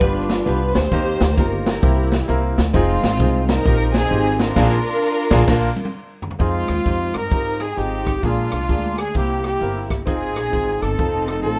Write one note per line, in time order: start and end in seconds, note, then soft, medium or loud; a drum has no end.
0.00 0.40 G1 medium
0.00 0.71 G2 medium
0.00 0.31 B3 medium
0.00 0.71 D4 medium
0.00 0.31 D4 medium
0.00 0.71 F4 medium
0.00 0.31 F4 medium
0.00 0.31 G4 medium
0.00 0.30 B4 loud
0.00 kick loud
0.00 closed hi-hat medium
0.29 snare loud
0.29 closed hi-hat medium
0.46 0.71 C2 loud
0.46 0.76 B3 medium
0.46 0.77 D4 medium
0.46 0.77 F4 medium
0.46 0.78 G4 medium
0.46 0.73 B4 loud
0.46 closed hi-hat medium
0.75 0.90 D2 medium
0.75 1.63 G4 medium
0.75 1.37 C5 loud
0.75 snare loud
0.75 closed hi-hat medium
0.92 1.17 D#2 loud
0.92 1.63 D#3 medium
0.92 1.22 A#3 medium
0.92 1.23 C4 medium
0.92 1.23 D#4 medium
0.92 1.23 G4 loud
0.92 kick loud
0.92 closed hi-hat medium
1.20 1.39 D2 loud
1.20 snare loud
1.20 closed hi-hat medium
1.37 1.76 G1 medium
1.37 1.68 A#3 medium
1.37 1.68 C4 medium
1.37 1.69 D#4 medium
1.37 1.69 F4 medium
1.37 1.66 A#4 medium
1.37 kick medium
1.37 closed hi-hat medium
1.66 2.54 E4 medium
1.66 2.54 G4 medium
1.66 2.09 A#4 medium
1.66 snare loud
1.66 closed hi-hat medium
1.82 2.22 C2 loud
1.82 2.54 C3 medium
1.82 2.13 A#3 medium
1.82 2.13 C4 medium
1.82 2.14 E4 medium
1.82 2.14 G4 medium
1.82 kick loud
1.82 closed hi-hat medium
2.11 snare loud
2.11 closed hi-hat medium
2.28 2.53 C2 loud
2.28 2.59 A#3 medium
2.28 2.59 C4 medium
2.28 2.60 E4 medium
2.28 2.60 A#4 medium
2.28 closed hi-hat medium
2.58 2.72 D2 loud
2.58 snare loud
2.58 closed hi-hat medium
2.74 2.99 F1 loud
2.74 3.62 G#3 medium
2.74 3.04 C4 loud
2.74 3.62 C4 medium
2.74 3.05 D#4 medium
2.74 3.45 F4 loud
2.74 3.05 F4 medium
2.74 3.06 G#4 loud
2.74 kick loud
2.74 closed hi-hat loud
3.03 3.20 G#1 medium
3.03 snare loud
3.03 closed hi-hat medium
3.20 3.59 C2 medium
3.20 3.50 C4 medium
3.20 3.50 D#4 medium
3.20 3.51 F4 medium
3.20 3.51 G#4 medium
3.20 kick medium
3.20 closed hi-hat medium
3.48 3.94 D#4 medium
3.48 3.92 A#4 loud
3.48 snare loud
3.48 closed hi-hat medium
3.65 4.04 A#1 loud
3.65 3.96 C4 medium
3.65 3.97 D#4 medium
3.65 3.97 F4 medium
3.65 3.97 G4 medium
3.65 kick loud
3.65 closed hi-hat medium
3.94 4.53 C4 medium
3.94 4.53 D#4 medium
3.94 4.37 G#4 loud
3.94 snare loud
3.94 closed hi-hat medium
4.11 4.50 G#1 loud
4.11 4.41 C4 medium
4.11 4.42 D#4 medium
4.11 4.42 F4 medium
4.11 4.42 G4 medium
4.11 closed hi-hat medium
4.39 5.91 D4 medium
4.39 5.91 F4 medium
4.39 5.95 A#4 loud
4.39 snare loud
4.39 closed hi-hat medium
4.56 4.76 A#1 loud
4.56 4.77 A#2 loud
4.56 4.76 A#3 loud
4.56 4.77 D4 loud
4.56 4.77 F4 loud
4.56 4.77 G#4 loud
4.56 kick loud
4.56 snare loud
4.56 crash medium
5.31 5.43 A#1 loud
5.31 5.42 A#3 loud
5.31 5.43 D4 loud
5.31 5.43 F4 loud
5.31 5.44 G#4 loud
5.31 kick loud
5.31 snare loud
5.47 5.68 A#1 medium
5.47 5.68 A#3 loud
5.47 5.68 D4 loud
5.47 5.69 F4 loud
5.47 5.69 A#4 loud
5.47 kick loud
5.47 snare loud
5.47 crash medium
5.76 high tom medium
5.85 high tom medium
6.22 floor tom loud
6.31 floor tom medium
6.39 6.65 F2 medium
6.39 7.29 G#3 medium
6.39 6.70 C4 medium
6.39 7.28 C4 medium
6.39 6.70 D#4 medium
6.39 6.70 F4 medium
6.39 7.19 F4 medium
6.39 7.11 F4 medium
6.39 6.71 G#4 medium
6.39 kick medium
6.39 closed hi-hat medium
6.68 6.83 D#2 medium
6.68 cross-stick loud
6.68 closed hi-hat medium
6.85 7.10 F2 medium
6.85 7.16 C4 medium
6.85 7.16 D#4 medium
6.85 7.16 F4 medium
6.85 7.17 G4 medium
6.85 kick medium
6.85 closed hi-hat medium
7.14 7.29 G2 medium
7.14 7.77 D#4 medium
7.14 7.61 A#4 medium
7.14 7.63 A#4 loud
7.14 cross-stick loud
7.14 closed hi-hat medium
7.30 7.71 G#2 medium
7.30 7.62 C4 medium
7.30 7.62 D#4 medium
7.30 7.63 F4 medium
7.30 7.63 G4 medium
7.30 kick loud
7.30 closed hi-hat medium
7.59 7.78 G#4 medium
7.59 7.80 G#4 medium
7.59 cross-stick medium
7.59 closed hi-hat medium
7.76 8.16 G#1 medium
7.76 8.08 C4 medium
7.76 8.20 C4 medium
7.76 8.08 D#4 medium
7.76 8.21 D#4 medium
7.76 8.09 F4 medium
7.76 8.23 G4 medium
7.76 8.26 G4 medium
7.76 8.09 G#4 medium
7.76 closed hi-hat medium
8.06 kick medium
8.06 cross-stick loud
8.06 closed hi-hat medium
8.23 8.48 A#1 medium
8.23 8.95 A#2 medium
8.23 9.12 G#3 medium
8.23 8.54 A#3 medium
8.23 8.54 D4 medium
8.23 9.12 D4 medium
8.23 8.99 F4 medium
8.23 9.01 F4 medium
8.23 8.55 F4 medium
8.23 8.55 G#4 medium
8.23 kick medium
8.23 closed hi-hat medium
8.52 8.67 C2 medium
8.52 cross-stick loud
8.52 closed hi-hat medium
8.68 9.08 D2 medium
8.68 8.99 A#3 medium
8.68 9.00 D4 medium
8.68 9.00 F4 medium
8.68 9.00 G#4 medium
8.68 kick medium
8.68 closed hi-hat medium
8.98 9.15 G#4 medium
8.98 9.16 G#4 medium
8.98 cross-stick loud
8.98 closed hi-hat medium
9.14 9.54 C2 medium
9.14 9.87 C3 medium
9.14 9.46 A#3 medium
9.14 9.42 A#3 medium
9.14 9.46 C4 medium
9.14 9.42 E4 medium
9.14 9.46 E4 medium
9.14 9.43 G4 medium
9.14 9.47 G4 medium
9.14 9.44 G4 medium
9.14 kick medium
9.14 closed hi-hat medium
9.43 10.03 A#3 medium
9.43 10.03 E4 medium
9.43 9.87 G4 medium
9.43 9.88 G4 medium
9.43 cross-stick medium
9.43 closed hi-hat medium
9.61 10.07 G1 medium
9.61 9.92 A#3 medium
9.61 9.92 C4 medium
9.61 9.92 E4 medium
9.61 9.93 A#4 medium
9.61 closed hi-hat medium
9.90 kick medium
9.90 cross-stick loud
9.90 closed hi-hat medium
10.06 10.36 F1 medium
10.06 10.37 C4 medium
10.06 10.80 C4 medium
10.06 10.38 D#4 medium
10.06 10.80 D#4 medium
10.06 10.38 F4 medium
10.06 10.38 G#4 loud
10.06 10.83 G#4 medium
10.06 10.79 G#4 medium
10.06 kick medium
10.06 closed hi-hat medium
10.36 10.51 A#1 medium
10.36 cross-stick medium
10.36 closed hi-hat medium
10.51 10.78 G#1 medium
10.51 10.83 C4 medium
10.51 10.83 D#4 medium
10.51 10.83 F4 medium
10.51 10.84 G#4 medium
10.51 kick medium
10.51 closed hi-hat medium
10.81 10.97 G1 medium
10.81 11.59 C4 medium
10.81 11.59 D#4 medium
10.81 11.26 A4 medium
10.81 11.41 A4 medium
10.81 cross-stick loud
10.81 closed hi-hat medium
10.98 11.45 F1 medium
10.98 11.29 C4 medium
10.98 11.30 D#4 medium
10.98 11.30 F4 medium
10.98 11.30 A4 medium
10.98 kick loud
10.98 closed hi-hat medium
11.27 11.42 A4 medium
11.27 cross-stick medium
11.27 closed hi-hat medium
11.43 11.59 A1 medium
11.43 11.59 C4 medium
11.43 11.59 D#4 medium
11.43 11.59 F4 medium
11.43 11.59 A4 medium
11.43 closed hi-hat medium